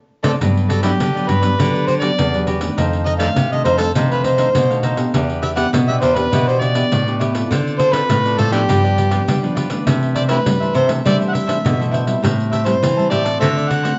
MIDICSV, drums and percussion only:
0, 0, Header, 1, 2, 480
1, 0, Start_track
1, 0, Key_signature, 1, "major"
1, 0, Tempo, 591133
1, 333, Time_signature, 4, 2, 24, 8
1, 11357, End_track
2, 0, Start_track
2, 0, Title_t, "Pandeiro"
2, 195, Note_on_c, 9, 54, 102
2, 277, Note_off_c, 9, 54, 0
2, 335, Note_on_c, 9, 54, 76
2, 416, Note_off_c, 9, 54, 0
2, 466, Note_on_c, 9, 54, 33
2, 547, Note_off_c, 9, 54, 0
2, 567, Note_on_c, 9, 54, 60
2, 649, Note_off_c, 9, 54, 0
2, 674, Note_on_c, 9, 54, 70
2, 755, Note_off_c, 9, 54, 0
2, 814, Note_on_c, 9, 54, 80
2, 895, Note_off_c, 9, 54, 0
2, 947, Note_on_c, 9, 54, 28
2, 1029, Note_off_c, 9, 54, 0
2, 1046, Note_on_c, 9, 54, 55
2, 1127, Note_off_c, 9, 54, 0
2, 1159, Note_on_c, 9, 54, 60
2, 1240, Note_off_c, 9, 54, 0
2, 1296, Note_on_c, 9, 54, 69
2, 1377, Note_off_c, 9, 54, 0
2, 1422, Note_on_c, 9, 54, 28
2, 1503, Note_off_c, 9, 54, 0
2, 1528, Note_on_c, 9, 54, 47
2, 1609, Note_off_c, 9, 54, 0
2, 1639, Note_on_c, 9, 54, 60
2, 1720, Note_off_c, 9, 54, 0
2, 1777, Note_on_c, 9, 54, 81
2, 1858, Note_off_c, 9, 54, 0
2, 1901, Note_on_c, 9, 54, 33
2, 1982, Note_off_c, 9, 54, 0
2, 2006, Note_on_c, 9, 54, 54
2, 2087, Note_off_c, 9, 54, 0
2, 2119, Note_on_c, 9, 54, 61
2, 2200, Note_off_c, 9, 54, 0
2, 2257, Note_on_c, 9, 54, 66
2, 2338, Note_off_c, 9, 54, 0
2, 2381, Note_on_c, 9, 54, 34
2, 2463, Note_off_c, 9, 54, 0
2, 2487, Note_on_c, 9, 54, 54
2, 2569, Note_off_c, 9, 54, 0
2, 2598, Note_on_c, 9, 54, 66
2, 2679, Note_off_c, 9, 54, 0
2, 2731, Note_on_c, 9, 54, 75
2, 2813, Note_off_c, 9, 54, 0
2, 2865, Note_on_c, 9, 54, 31
2, 2946, Note_off_c, 9, 54, 0
2, 2967, Note_on_c, 9, 54, 57
2, 3048, Note_off_c, 9, 54, 0
2, 3073, Note_on_c, 9, 54, 66
2, 3155, Note_off_c, 9, 54, 0
2, 3210, Note_on_c, 9, 54, 77
2, 3292, Note_off_c, 9, 54, 0
2, 3342, Note_on_c, 9, 54, 31
2, 3423, Note_off_c, 9, 54, 0
2, 3446, Note_on_c, 9, 54, 59
2, 3527, Note_off_c, 9, 54, 0
2, 3557, Note_on_c, 9, 54, 61
2, 3638, Note_off_c, 9, 54, 0
2, 3694, Note_on_c, 9, 54, 73
2, 3775, Note_off_c, 9, 54, 0
2, 3822, Note_on_c, 9, 54, 30
2, 3903, Note_off_c, 9, 54, 0
2, 3923, Note_on_c, 9, 54, 56
2, 4004, Note_off_c, 9, 54, 0
2, 4039, Note_on_c, 9, 54, 61
2, 4120, Note_off_c, 9, 54, 0
2, 4174, Note_on_c, 9, 54, 77
2, 4255, Note_off_c, 9, 54, 0
2, 4301, Note_on_c, 9, 54, 31
2, 4382, Note_off_c, 9, 54, 0
2, 4407, Note_on_c, 9, 54, 58
2, 4488, Note_off_c, 9, 54, 0
2, 4522, Note_on_c, 9, 54, 65
2, 4603, Note_off_c, 9, 54, 0
2, 4660, Note_on_c, 9, 54, 83
2, 4741, Note_off_c, 9, 54, 0
2, 4789, Note_on_c, 9, 54, 28
2, 4871, Note_off_c, 9, 54, 0
2, 4892, Note_on_c, 9, 54, 57
2, 4974, Note_off_c, 9, 54, 0
2, 5006, Note_on_c, 9, 54, 61
2, 5087, Note_off_c, 9, 54, 0
2, 5138, Note_on_c, 9, 54, 69
2, 5219, Note_off_c, 9, 54, 0
2, 5269, Note_on_c, 9, 54, 28
2, 5350, Note_off_c, 9, 54, 0
2, 5373, Note_on_c, 9, 54, 54
2, 5455, Note_off_c, 9, 54, 0
2, 5483, Note_on_c, 9, 54, 66
2, 5564, Note_off_c, 9, 54, 0
2, 5621, Note_on_c, 9, 54, 75
2, 5702, Note_off_c, 9, 54, 0
2, 5748, Note_on_c, 9, 54, 34
2, 5829, Note_off_c, 9, 54, 0
2, 5855, Note_on_c, 9, 54, 58
2, 5937, Note_off_c, 9, 54, 0
2, 5966, Note_on_c, 9, 54, 62
2, 6048, Note_off_c, 9, 54, 0
2, 6105, Note_on_c, 9, 54, 76
2, 6186, Note_off_c, 9, 54, 0
2, 6230, Note_on_c, 9, 54, 35
2, 6312, Note_off_c, 9, 54, 0
2, 6330, Note_on_c, 9, 54, 60
2, 6411, Note_off_c, 9, 54, 0
2, 6443, Note_on_c, 9, 54, 68
2, 6524, Note_off_c, 9, 54, 0
2, 6573, Note_on_c, 9, 54, 81
2, 6655, Note_off_c, 9, 54, 0
2, 6701, Note_on_c, 9, 54, 30
2, 6782, Note_off_c, 9, 54, 0
2, 6809, Note_on_c, 9, 54, 60
2, 6890, Note_off_c, 9, 54, 0
2, 6922, Note_on_c, 9, 54, 62
2, 7004, Note_off_c, 9, 54, 0
2, 7059, Note_on_c, 9, 54, 69
2, 7140, Note_off_c, 9, 54, 0
2, 7186, Note_on_c, 9, 54, 29
2, 7267, Note_off_c, 9, 54, 0
2, 7292, Note_on_c, 9, 54, 55
2, 7373, Note_off_c, 9, 54, 0
2, 7401, Note_on_c, 9, 54, 61
2, 7482, Note_off_c, 9, 54, 0
2, 7539, Note_on_c, 9, 54, 83
2, 7620, Note_off_c, 9, 54, 0
2, 7663, Note_on_c, 9, 54, 28
2, 7745, Note_off_c, 9, 54, 0
2, 7769, Note_on_c, 9, 54, 62
2, 7850, Note_off_c, 9, 54, 0
2, 7876, Note_on_c, 9, 54, 64
2, 7957, Note_off_c, 9, 54, 0
2, 8013, Note_on_c, 9, 54, 81
2, 8094, Note_off_c, 9, 54, 0
2, 8142, Note_on_c, 9, 54, 34
2, 8223, Note_off_c, 9, 54, 0
2, 8247, Note_on_c, 9, 54, 61
2, 8328, Note_off_c, 9, 54, 0
2, 8354, Note_on_c, 9, 54, 69
2, 8436, Note_off_c, 9, 54, 0
2, 8496, Note_on_c, 9, 54, 78
2, 8577, Note_off_c, 9, 54, 0
2, 8628, Note_on_c, 9, 54, 29
2, 8709, Note_off_c, 9, 54, 0
2, 8729, Note_on_c, 9, 54, 56
2, 8810, Note_off_c, 9, 54, 0
2, 8843, Note_on_c, 9, 54, 63
2, 8925, Note_off_c, 9, 54, 0
2, 8983, Note_on_c, 9, 54, 74
2, 9064, Note_off_c, 9, 54, 0
2, 9108, Note_on_c, 9, 54, 30
2, 9189, Note_off_c, 9, 54, 0
2, 9216, Note_on_c, 9, 54, 55
2, 9297, Note_off_c, 9, 54, 0
2, 9330, Note_on_c, 9, 54, 66
2, 9411, Note_off_c, 9, 54, 0
2, 9465, Note_on_c, 9, 54, 85
2, 9547, Note_off_c, 9, 54, 0
2, 9595, Note_on_c, 9, 54, 30
2, 9677, Note_off_c, 9, 54, 0
2, 9696, Note_on_c, 9, 54, 52
2, 9777, Note_off_c, 9, 54, 0
2, 9804, Note_on_c, 9, 54, 57
2, 9885, Note_off_c, 9, 54, 0
2, 9943, Note_on_c, 9, 54, 79
2, 10024, Note_off_c, 9, 54, 0
2, 10068, Note_on_c, 9, 54, 32
2, 10149, Note_off_c, 9, 54, 0
2, 10173, Note_on_c, 9, 54, 60
2, 10254, Note_off_c, 9, 54, 0
2, 10282, Note_on_c, 9, 54, 61
2, 10364, Note_off_c, 9, 54, 0
2, 10420, Note_on_c, 9, 54, 79
2, 10502, Note_off_c, 9, 54, 0
2, 10548, Note_on_c, 9, 54, 30
2, 10629, Note_off_c, 9, 54, 0
2, 10651, Note_on_c, 9, 54, 57
2, 10732, Note_off_c, 9, 54, 0
2, 10764, Note_on_c, 9, 54, 59
2, 10846, Note_off_c, 9, 54, 0
2, 10901, Note_on_c, 9, 54, 70
2, 10982, Note_off_c, 9, 54, 0
2, 11026, Note_on_c, 9, 54, 30
2, 11108, Note_off_c, 9, 54, 0
2, 11129, Note_on_c, 9, 54, 56
2, 11210, Note_off_c, 9, 54, 0
2, 11246, Note_on_c, 9, 54, 61
2, 11327, Note_off_c, 9, 54, 0
2, 11357, End_track
0, 0, End_of_file